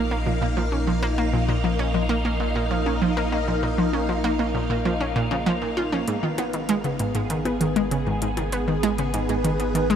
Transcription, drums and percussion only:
6.08 closed hi-hat
6.38 closed hi-hat, percussion blips
6.53 closed hi-hat
6.69 closed hi-hat
6.84 closed hi-hat
6.99 closed hi-hat
7.15 closed hi-hat
7.30 closed hi-hat
7.45 closed hi-hat, percussion blips
7.61 closed hi-hat
7.76 closed hi-hat
7.91 closed hi-hat
8.22 closed hi-hat
8.37 closed hi-hat, percussion blips
8.52 closed hi-hat
8.83 closed hi-hat, percussion blips
8.98 closed hi-hat
9.14 closed hi-hat
9.29 closed hi-hat
9.45 closed hi-hat
9.60 closed hi-hat
9.75 closed hi-hat
9.91 closed hi-hat

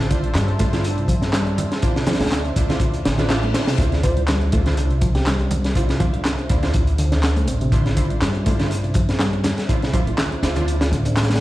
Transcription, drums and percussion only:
0.11 kick, closed hi-hat
0.24 closed hi-hat, high conga
0.35 snare, clap, closed hi-hat
0.48 closed hi-hat
0.59 kick, closed hi-hat
0.73 snare, closed hi-hat
0.84 closed hi-hat
0.98 closed hi-hat
1.08 kick, closed hi-hat
1.22 snare, closed hi-hat
1.33 snare, clap, closed hi-hat
1.47 closed hi-hat
1.58 closed hi-hat, high conga, low conga
1.72 snare, closed hi-hat
1.82 kick, closed hi-hat
1.96 snare, closed hi-hat
2.06 snare, closed hi-hat, low conga
2.13 snare, closed hi-hat
2.20 snare, closed hi-hat, high conga
2.26 snare, closed hi-hat
2.31 snare, clap, closed hi-hat
2.45 closed hi-hat
2.56 kick, closed hi-hat
2.69 snare, closed hi-hat, low conga
2.80 kick, closed hi-hat
2.94 closed hi-hat
3.05 snare, closed hi-hat
3.18 snare, closed hi-hat, low conga
3.30 snare, clap, closed hi-hat
3.43 closed hi-hat, high conga
3.54 snare, closed hi-hat
3.67 snare, closed hi-hat
3.78 kick, closed hi-hat
3.92 snare, closed hi-hat
4.03 kick, closed hi-hat
4.17 closed hi-hat, high conga
4.28 snare, clap, closed hi-hat
4.41 closed hi-hat
4.52 kick, closed hi-hat
4.66 snare, closed hi-hat
4.77 closed hi-hat
4.90 closed hi-hat
5.01 kick, closed hi-hat
5.15 snare, closed hi-hat
5.26 snare, clap, closed hi-hat
5.39 closed hi-hat
5.51 closed hi-hat, high conga, low conga
5.64 snare, closed hi-hat
5.75 kick, closed hi-hat
5.89 snare, closed hi-hat
6.00 kick, closed hi-hat, low conga
6.14 closed hi-hat, high conga
6.25 snare, clap, closed hi-hat
6.39 closed hi-hat
6.49 kick, closed hi-hat
6.63 snare, closed hi-hat, low conga
6.74 kick, closed hi-hat
6.87 closed hi-hat
6.98 closed hi-hat
7.12 snare, closed hi-hat, low conga
7.23 snare, clap, closed hi-hat
7.36 closed hi-hat, high conga
7.47 closed hi-hat
7.61 closed hi-hat
7.72 kick, closed hi-hat
7.86 snare, closed hi-hat
7.97 kick, closed hi-hat
8.10 closed hi-hat, high conga
8.22 snare, clap, closed hi-hat
8.35 closed hi-hat
8.46 kick, closed hi-hat
8.60 snare, closed hi-hat
8.71 closed hi-hat
8.84 closed hi-hat
8.94 kick, closed hi-hat
9.09 snare, closed hi-hat
9.19 snare, clap, closed hi-hat
9.33 closed hi-hat
9.44 snare, closed hi-hat, high conga, low conga
9.58 snare, closed hi-hat
9.69 kick, closed hi-hat
9.82 snare, closed hi-hat
9.93 kick, closed hi-hat, low conga
10.06 closed hi-hat, high conga
10.18 snare, clap, closed hi-hat
10.32 closed hi-hat
10.43 snare, closed hi-hat
10.56 closed hi-hat, low conga
10.68 closed hi-hat
10.81 snare, closed hi-hat
10.93 closed hi-hat
11.05 closed hi-hat, low conga
11.17 snare, clap, closed hi-hat
11.23 snare, closed hi-hat
11.29 snare, closed hi-hat, high conga
11.36 snare, closed hi-hat

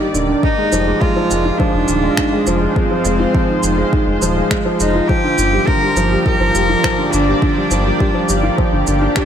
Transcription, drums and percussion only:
0.15 shaker
0.43 kick
0.72 shaker
1.02 kick
1.31 shaker
1.60 kick
1.88 shaker
2.17 finger snap, kick
2.47 shaker
2.76 kick
3.05 shaker
3.35 kick
3.63 shaker
3.93 kick
4.22 shaker
4.51 finger snap, kick
4.80 shaker
5.09 kick
5.38 shaker
5.68 kick
5.97 shaker
6.26 kick
6.55 shaker
6.84 finger snap, kick
7.13 shaker
7.42 kick
7.71 shaker
8.00 kick
8.29 shaker
8.58 kick
8.87 shaker
9.16 finger snap, kick

